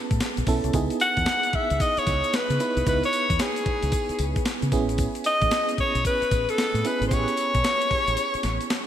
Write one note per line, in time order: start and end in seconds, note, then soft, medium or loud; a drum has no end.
0.00 0.47 B3 medium
0.00 0.48 C#4 medium
0.00 0.48 E4 medium
0.00 0.75 G#4 medium
0.00 0.76 B4 medium
0.11 0.19 A2 medium
0.11 kick loud
0.11 closed hi-hat medium
0.11 shaker medium
0.20 snare loud
0.20 closed hi-hat medium
0.20 tambourine medium
0.20 shaker medium
0.37 0.46 A#1 medium
0.37 closed hi-hat medium
0.37 shaker soft
0.47 0.61 B1 medium
0.47 0.71 B3 medium
0.47 0.71 C#4 medium
0.47 0.71 E4 medium
0.47 0.71 A4 loud
0.47 kick loud
0.47 open hi-hat medium
0.47 tambourine medium
0.47 shaker medium
0.64 0.72 C2 medium
0.64 closed hi-hat soft
0.64 shaker soft
0.73 0.87 C#2 loud
0.73 1.64 B3 medium
0.73 1.64 D#4 medium
0.73 1.64 E4 medium
0.73 1.64 G#4 loud
0.73 kick loud
0.73 closed hi-hat medium
0.73 tambourine medium
0.73 shaker medium
0.90 closed hi-hat medium
0.90 shaker medium
1.00 1.57 F#5 loud
1.00 closed hi-hat medium
1.00 tambourine medium
1.00 shaker medium
1.17 1.25 E2 loud
1.17 kick medium
1.17 closed hi-hat medium
1.17 shaker medium
1.26 snare loud
1.26 closed hi-hat medium
1.26 tambourine medium
1.26 shaker medium
1.43 closed hi-hat medium
1.43 shaker medium
1.53 1.83 E5 loud
1.53 muted fingered electric bass stroke medium
1.53 kick medium
1.53 closed hi-hat medium
1.70 1.78 C#2 medium
1.70 closed hi-hat medium
1.70 shaker soft
1.80 2.00 D#5 loud
1.80 kick loud
1.80 closed hi-hat medium
1.80 tambourine medium
1.80 shaker medium
1.97 2.37 C#5 loud
1.97 muted fingered electric bass stroke medium
1.97 closed hi-hat soft
1.97 shaker medium
2.07 2.20 C#2 loud
2.07 kick loud
2.07 closed hi-hat medium
2.07 tambourine medium
2.07 shaker medium
2.24 closed hi-hat medium
2.24 shaker soft
2.33 2.87 B4 loud
2.33 snare loud
2.33 closed hi-hat medium
2.33 tambourine medium
2.33 shaker medium
2.50 2.58 C#3 loud
2.50 closed hi-hat medium
2.50 shaker medium
2.60 2.83 B3 medium
2.60 2.83 D#4 medium
2.60 2.83 E4 medium
2.60 2.84 B4 medium
2.60 closed hi-hat medium
2.60 tambourine medium
2.60 shaker medium
2.77 2.84 C2 loud
2.77 closed hi-hat soft
2.77 shaker medium
2.86 3.00 C#2 loud
2.86 3.76 B3 medium
2.86 3.76 D#4 medium
2.86 3.76 E4 medium
2.86 3.77 B4 medium
2.86 3.03 B4 loud
2.86 kick loud
2.86 closed hi-hat medium
2.86 tambourine medium
2.86 shaker medium
3.04 3.43 C#5 loud
3.04 closed hi-hat medium
3.04 shaker soft
3.13 closed hi-hat medium
3.13 tambourine medium
3.13 shaker medium
3.30 3.38 E2 loud
3.30 kick loud
3.30 closed hi-hat medium
3.30 shaker medium
3.39 4.73 G#4 medium
3.39 snare loud
3.39 closed hi-hat medium
3.39 tambourine loud
3.39 shaker medium
3.56 closed hi-hat medium
3.56 shaker medium
3.66 muted fingered electric bass stroke soft
3.66 kick medium
3.66 closed hi-hat medium
3.83 3.91 C#2 medium
3.83 closed hi-hat medium
3.83 shaker medium
3.92 kick medium
3.92 closed hi-hat medium
3.92 tambourine medium
3.92 shaker medium
4.09 muted fingered electric bass stroke medium
4.09 closed hi-hat soft
4.09 shaker medium
4.19 4.33 C#2 medium
4.19 closed hi-hat medium
4.19 tambourine medium
4.19 shaker medium
4.36 kick loud
4.36 closed hi-hat medium
4.36 shaker soft
4.45 snare loud
4.45 closed hi-hat medium
4.45 tambourine medium
4.45 shaker medium
4.62 4.70 C#3 loud
4.62 closed hi-hat medium
4.62 shaker soft
4.72 5.06 A1 medium
4.72 5.62 B3 medium
4.72 5.62 C#4 medium
4.72 5.62 E4 medium
4.72 5.62 G#4 loud
4.72 kick medium
4.72 closed hi-hat medium
4.72 tambourine medium
4.72 shaker medium
4.89 closed hi-hat medium
4.89 shaker medium
4.98 kick loud
4.98 closed hi-hat medium
4.98 tambourine medium
4.98 shaker medium
5.15 closed hi-hat medium
5.15 shaker soft
5.24 5.75 D#5 loud
5.24 closed hi-hat medium
5.24 tambourine medium
5.24 shaker medium
5.41 5.50 A1 loud
5.41 kick loud
5.41 closed hi-hat medium
5.41 shaker medium
5.51 snare loud
5.51 closed hi-hat medium
5.51 tambourine loud
5.51 shaker medium
5.69 closed hi-hat medium
5.69 shaker medium
5.78 6.04 C#5 loud
5.78 muted fingered electric bass stroke medium
5.78 kick medium
5.78 closed hi-hat medium
5.95 6.03 B1 medium
5.95 closed hi-hat medium
5.95 shaker soft
6.05 6.51 B4 loud
6.05 kick loud
6.05 closed hi-hat medium
6.05 tambourine medium
6.05 shaker medium
6.22 muted fingered electric bass stroke soft
6.22 closed hi-hat soft
6.22 shaker medium
6.31 6.45 A1 medium
6.31 kick loud
6.31 closed hi-hat medium
6.31 tambourine medium
6.31 shaker medium
6.49 6.88 A4 loud
6.49 closed hi-hat medium
6.49 shaker soft
6.58 snare loud
6.58 closed hi-hat medium
6.58 tambourine medium
6.58 shaker medium
6.74 6.82 A2 loud
6.74 closed hi-hat medium
6.74 shaker soft
6.85 7.08 B3 medium
6.85 7.08 C#4 medium
6.85 7.08 E4 medium
6.85 7.08 G#4 medium
6.85 7.07 B4 loud
6.85 closed hi-hat medium
6.85 tambourine medium
6.85 shaker medium
7.01 7.09 G#1 loud
7.01 closed hi-hat soft
7.01 shaker medium
7.08 7.25 A1 loud
7.08 8.01 B3 medium
7.08 8.01 C#4 medium
7.08 8.01 E4 medium
7.08 7.15 C5 medium
7.08 kick loud
7.08 closed hi-hat medium
7.08 tambourine medium
7.08 shaker medium
7.12 7.20 G4 medium
7.12 8.87 C#5 loud
7.18 8.04 G#4 medium
7.28 closed hi-hat medium
7.28 shaker medium
7.37 closed hi-hat medium
7.37 tambourine medium
7.37 shaker medium
7.54 7.63 B1 loud
7.54 kick loud
7.54 closed hi-hat medium
7.54 shaker medium
7.64 snare loud
7.64 closed hi-hat medium
7.64 tambourine loud
7.64 shaker medium
7.81 closed hi-hat medium
7.81 shaker soft
7.91 muted fingered electric bass stroke medium
7.91 kick medium
7.91 open hi-hat medium
8.08 8.15 A1 medium
8.08 closed hi-hat medium
8.08 shaker soft
8.17 closed hi-hat medium
8.17 tambourine medium
8.17 shaker medium
8.34 muted fingered electric bass stroke medium
8.34 closed hi-hat soft
8.34 shaker medium
8.43 8.57 A1 medium
8.43 snare medium
8.43 closed hi-hat medium
8.43 tambourine medium
8.43 shaker medium
8.61 closed hi-hat medium
8.61 shaker medium
8.70 snare loud
8.70 closed hi-hat medium
8.70 tambourine medium
8.70 shaker medium